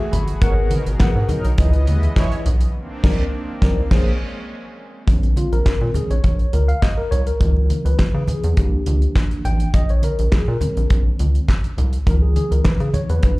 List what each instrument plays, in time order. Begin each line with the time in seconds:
Already playing: analog synth pad E3 A3 F#4 G#4, tine electric piano A3 F#4 G#4 E5 G#5
0.12 analog synth bass G1, tine electric piano B5, closed hi-hat, low conga
0.28 closed hi-hat
0.41 analog synth bass G#1, analog synth pad B2 A#4, tine electric piano B3 G#4 A#4 F#5, analog polysynth C#4 A#4 C#5, kick, closed hi-hat, low conga
0.70 analog polysynth F#3 D#4 B4, closed hi-hat, high conga
0.86 analog synth bass G#1, closed hi-hat
1.00 analog synth bass G#2, analog polysynth F#3 D#4 B4, tine electric piano B3 G#4 A#4 F#5, kick, snare, clap, muted conga
1.15 analog synth bass G#2
1.29 analog polysynth F#3 D#4 A#4, closed hi-hat, high conga, low conga
1.45 analog synth bass B1, closed hi-hat
1.58 analog synth bass C#2, analog synth pad C#3 E3 B3 D#5, analog polysynth E3 D#4 G#4, tine electric piano C#4 E4 B4 D#5, kick, closed hi-hat, muted conga
1.73 closed hi-hat
1.87 analog synth bass D#2, analog polysynth G#3 E4 B4, closed hi-hat, high conga
2.03 closed hi-hat
2.16 analog polysynth G#3 E4 C#5, tine electric piano C#4 E4 B4 D#5, kick, snare, clap
2.32 closed hi-hat, muted conga
2.46 analog synth bass B1, closed hi-hat, low conga
2.61 closed hi-hat
2.74 analog synth pad D#3 A#3 C4 D4
3.03 analog synth bass C2, tine electric piano C4 D#4 A#4 D5, kick, snare, crash
3.62 analog synth bass C2, tine electric piano C4 D#4 A#4 D5, kick, snare
3.91 analog synth bass A#1, analog synth pad G#3 C#4, tine electric piano A#3 C#4 G#4 C5, kick, snare, crash
5.07 analog synth bass A#1, tine electric piano D#3 G#3 C4 C#4, kick, closed hi-hat
5.23 closed hi-hat, muted conga
5.36 tine electric piano F4, closed hi-hat, high conga
5.52 analog synth bass A#1, tine electric piano A#4, closed hi-hat
5.66 analog synth bass A#2, kick, snare, clap
5.80 analog synth bass A#2, muted conga
5.94 tine electric piano D#3 G#3 C4 C#4 G#4, closed hi-hat, high conga, low conga
6.10 analog synth bass A#1, tine electric piano C#5, closed hi-hat
6.24 analog synth bass A#1, kick, closed hi-hat
6.39 closed hi-hat
6.53 analog synth bass C#2, tine electric piano A#4, closed hi-hat, high conga
6.68 tine electric piano F5, closed hi-hat
6.82 tine electric piano D#5, kick, snare, clap
6.97 tine electric piano A#4
7.11 analog synth bass C2, tine electric piano C#5, closed hi-hat, low conga
7.27 tine electric piano A#4, closed hi-hat
7.40 analog synth bass C#2, tine electric piano E3 F#3 B3 D#4, kick, closed hi-hat, muted conga
7.57 muted conga
7.70 closed hi-hat, high conga
7.85 analog synth bass C#2, tine electric piano B4, closed hi-hat
7.99 analog synth bass C#3, kick, snare, clap
8.14 analog synth bass C#3
8.28 tine electric piano G#4, closed hi-hat, high conga, low conga
8.44 analog synth bass E2, closed hi-hat
8.57 analog synth bass C2, tine electric piano D#3 F3 A#3 D4 G4, kick, closed hi-hat
8.86 analog synth bass C#2, closed hi-hat, high conga
9.02 closed hi-hat
9.16 kick, snare, clap
9.31 closed hi-hat, muted conga
9.45 analog synth bass A1, tine electric piano G5, closed hi-hat, low conga
9.60 closed hi-hat
9.74 analog synth bass A#1, tine electric piano D#5, kick, closed hi-hat
9.89 tine electric piano C#5, closed hi-hat
10.03 tine electric piano A#4, closed hi-hat, high conga
10.19 analog synth bass A#1, closed hi-hat
10.32 analog synth bass A#2, tine electric piano G#4, kick, snare, clap, muted conga
10.47 analog synth bass A#2, tine electric piano A#4, muted conga
10.61 tine electric piano D#3 G#3 C4 C#4, closed hi-hat, high conga, low conga
10.77 analog synth bass A#1, closed hi-hat
10.90 analog synth bass A#1, kick, closed hi-hat, muted conga
11.19 analog synth bass C#2, closed hi-hat, high conga
11.35 closed hi-hat
11.49 kick, snare, clap
11.64 closed hi-hat, muted conga
11.78 analog synth bass C2, closed hi-hat, low conga
11.93 closed hi-hat
12.06 analog synth bass C#2, tine electric piano E3 F#3 B3 D#4 A#4, kick, closed hi-hat
12.22 tine electric piano G#4
12.36 tine electric piano G#4, closed hi-hat, high conga
12.51 analog synth bass C#2, tine electric piano A#4, closed hi-hat
12.65 analog synth bass C#3, tine electric piano B4, kick, snare, clap
12.80 analog synth bass C#3, tine electric piano G#4, closed hi-hat
12.94 tine electric piano C#5, closed hi-hat, high conga, low conga
13.09 analog synth bass E2, tine electric piano B4, closed hi-hat
13.23 analog synth bass C2, tine electric piano D#3 F3 C4 D4, kick, closed hi-hat, muted conga